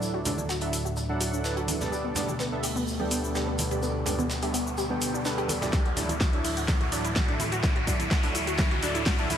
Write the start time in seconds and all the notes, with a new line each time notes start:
Already playing: D2 A2 F#3 D4 E4 A4 D5, riser
0.02 D3, cabasa, shaker
0.14 F#4
0.25 F#3 D4 E4 A4 D5, open hi-hat, low conga, cabasa, shaker
0.38 high conga, cabasa
0.49 F#4, snare, cabasa, shaker
0.61 F#3 D4 E4 A4 E5, closed hi-hat, open hi-hat
0.73 open hi-hat, cabasa, shaker
0.85 F#4, cabasa
0.97 D4, cabasa, shaker
1.09 F#3 D4 E4 A4 F#5, high conga
1.20 F#4, open hi-hat, cabasa, shaker
1.33 D4, cabasa
1.44 F#3 D4 E4 A4 B4, snare, cabasa, shaker
1.57 F#4, closed hi-hat
1.68 D4, open hi-hat, high conga, cabasa, shaker
1.81 G3 B3 D4 A4 D5, snare, low conga, cabasa
1.92 B2 G3 A3 G4, cabasa, shaker
2.04 B3
2.15 G3 B3 D4 A4 D5, snare, open hi-hat, low conga, cabasa, shaker
2.28 G4, high conga, cabasa
2.39 B3, snare, cabasa, shaker
2.52 G3 B3 D4 A4 E5
2.63 G4, open hi-hat, cabasa
2.76 B3, cabasa
2.87 cabasa, shaker
3.00 G3 B3 D4 G4 A4 G5, high conga
3.11 B3, open hi-hat, cabasa, shaker
3.24 cabasa
3.35 G3 B3 D4 G4 A4 B4, snare, cabasa, shaker
3.47 B3
3.58 open hi-hat, high conga, cabasa, shaker
3.71 G3 B3 D4 G4 A4 D5, closed hi-hat, cabasa
3.82 B3, cabasa, shaker
4.06 G3 B3 D4 G4 A4 D5, open hi-hat, low conga, cabasa, shaker
4.19 B3, high conga, cabasa
4.30 snare, cabasa, shaker
4.42 G3 B3 D4 G4 A4 E5, closed hi-hat, open hi-hat
4.54 B3, open hi-hat, cabasa, shaker
4.67 cabasa
4.78 G4, cabasa, shaker
4.90 G3 B3 D4 A4 G5, high conga
5.01 open hi-hat, cabasa, shaker
5.14 D4, cabasa
5.25 G3 B3 D4 A4 B4, snare, cabasa, shaker
5.38 G4, closed hi-hat
5.48 A4, open hi-hat, high conga, cabasa, shaker
5.61 F#3 D4 E4 G4 A4 D5, snare, low conga, cabasa
5.73 A2 E3 F#3 E4, kick, snare, closed hi-hat, cabasa, shaker
5.85 F#4, closed hi-hat
5.96 F#3 D4 E4 A4 D5, snare, open hi-hat, low conga, cabasa, shaker
6.09 E4, closed hi-hat, high conga, cabasa
6.20 F#4, kick, snare, closed hi-hat, cabasa, shaker
6.33 F#3 D4 E4 A4 E5, closed hi-hat
6.44 E4, open hi-hat, cabasa
6.57 F#4, closed hi-hat, cabasa
6.68 E4, kick, snare, closed hi-hat, cabasa, shaker
6.81 F#4, closed hi-hat, high conga
6.92 F#3 D4 E4 A4 D5, open hi-hat, cabasa, shaker
7.04 E4, closed hi-hat, cabasa
7.15 F#4, kick, snare, closed hi-hat, cabasa, shaker
7.28 F#3 D4 E4 A4 E5, closed hi-hat
7.40 E4, open hi-hat, high conga, cabasa, shaker
7.52 F#4, closed hi-hat, cabasa
7.63 D3 E4, kick, snare, closed hi-hat, cabasa, shaker
7.76 F#4, closed hi-hat
7.87 F#3 D4 E4 A4 D5, kick, open hi-hat, low conga, cabasa, shaker
8.00 E4, closed hi-hat, high conga, cabasa
8.11 F#4, kick, snare, closed hi-hat, cabasa, shaker
8.23 F#3 D4 E4 A4 E5, closed hi-hat, open hi-hat
8.35 E4, open hi-hat, cabasa, shaker
8.47 F#4, closed hi-hat, cabasa
8.58 E4, kick, snare, closed hi-hat, cabasa, shaker
8.71 F#4, closed hi-hat, high conga
8.82 F#3 D4 E4 A4 D5, open hi-hat, cabasa, shaker
8.95 E4, closed hi-hat, cabasa
9.06 F#4, kick, snare, closed hi-hat, cabasa, shaker
9.18 F#3 D4 E4 A4 E5, closed hi-hat
9.30 E4, open hi-hat, high conga, cabasa, shaker